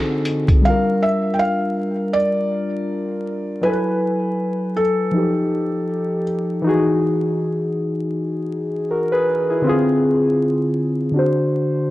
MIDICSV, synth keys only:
0, 0, Header, 1, 2, 480
1, 0, Start_track
1, 0, Tempo, 750000
1, 413, Time_signature, 4, 2, 24, 8
1, 7619, End_track
2, 0, Start_track
2, 0, Title_t, "Synth keys"
2, 0, Program_c, 0, 88
2, 0, Control_c, 0, 64, 127
2, 0, Note_on_c, 0, 50, 73
2, 0, Note_on_c, 0, 60, 62
2, 0, Note_on_c, 0, 63, 71
2, 0, Note_on_c, 0, 66, 76
2, 0, Note_on_c, 0, 68, 63
2, 0, Note_on_c, 0, 69, 80
2, 246, Note_off_c, 0, 50, 0
2, 250, Note_off_c, 0, 60, 0
2, 253, Note_off_c, 0, 63, 0
2, 278, Note_off_c, 0, 69, 0
2, 396, Note_on_c, 0, 55, 62
2, 416, Note_on_c, 0, 62, 54
2, 421, Control_c, 0, 64, 0
2, 422, Note_off_c, 0, 66, 0
2, 428, Note_off_c, 0, 68, 0
2, 429, Note_on_c, 0, 65, 53
2, 446, Note_on_c, 0, 70, 69
2, 519, Control_c, 0, 64, 127
2, 2299, Note_off_c, 0, 55, 0
2, 2309, Note_off_c, 0, 62, 0
2, 2313, Note_on_c, 0, 54, 63
2, 2316, Note_off_c, 0, 65, 0
2, 2324, Note_off_c, 0, 70, 0
2, 2326, Note_on_c, 0, 64, 53
2, 2335, Note_on_c, 0, 80, 57
2, 2342, Control_c, 0, 64, 0
2, 2346, Note_on_c, 0, 69, 58
2, 2360, Note_on_c, 0, 71, 66
2, 2471, Control_c, 0, 64, 127
2, 3264, Note_off_c, 0, 54, 0
2, 3270, Note_off_c, 0, 64, 0
2, 3273, Note_on_c, 0, 53, 56
2, 3275, Note_off_c, 0, 80, 0
2, 3280, Note_off_c, 0, 69, 0
2, 3288, Note_off_c, 0, 71, 0
2, 3290, Note_on_c, 0, 63, 55
2, 3302, Control_c, 0, 64, 0
2, 3304, Note_on_c, 0, 67, 52
2, 3319, Note_on_c, 0, 69, 65
2, 3403, Control_c, 0, 64, 127
2, 4224, Note_off_c, 0, 53, 0
2, 4232, Note_off_c, 0, 63, 0
2, 4235, Note_on_c, 0, 52, 76
2, 4240, Note_off_c, 0, 67, 0
2, 4247, Note_off_c, 0, 69, 0
2, 4250, Note_on_c, 0, 63, 68
2, 4261, Control_c, 0, 64, 0
2, 4269, Note_on_c, 0, 66, 71
2, 4281, Note_on_c, 0, 68, 83
2, 4355, Control_c, 0, 64, 127
2, 5666, Note_off_c, 0, 63, 0
2, 5675, Note_off_c, 0, 66, 0
2, 5681, Note_off_c, 0, 68, 0
2, 5700, Note_on_c, 0, 70, 61
2, 5704, Note_on_c, 0, 66, 50
2, 5826, Note_off_c, 0, 70, 0
2, 5828, Note_off_c, 0, 66, 0
2, 5837, Note_on_c, 0, 71, 72
2, 5844, Note_on_c, 0, 68, 64
2, 6061, Note_off_c, 0, 71, 0
2, 6065, Note_off_c, 0, 68, 0
2, 6081, Note_on_c, 0, 68, 56
2, 6086, Note_on_c, 0, 64, 47
2, 6138, Note_off_c, 0, 52, 0
2, 6154, Note_on_c, 0, 50, 82
2, 6168, Note_on_c, 0, 60, 74
2, 6181, Control_c, 0, 64, 0
2, 6187, Note_on_c, 0, 65, 72
2, 6195, Note_off_c, 0, 68, 0
2, 6202, Note_on_c, 0, 68, 89
2, 6282, Control_c, 0, 64, 127
2, 6306, Note_off_c, 0, 64, 0
2, 7104, Note_off_c, 0, 50, 0
2, 7112, Note_off_c, 0, 60, 0
2, 7113, Note_on_c, 0, 50, 69
2, 7121, Note_off_c, 0, 65, 0
2, 7128, Note_on_c, 0, 62, 65
2, 7129, Note_off_c, 0, 68, 0
2, 7140, Control_c, 0, 64, 0
2, 7142, Note_on_c, 0, 66, 63
2, 7159, Note_on_c, 0, 72, 81
2, 7259, Control_c, 0, 64, 127
2, 7619, Note_off_c, 0, 50, 0
2, 7619, Note_off_c, 0, 62, 0
2, 7619, Note_off_c, 0, 66, 0
2, 7619, Note_off_c, 0, 72, 0
2, 7619, End_track
0, 0, End_of_file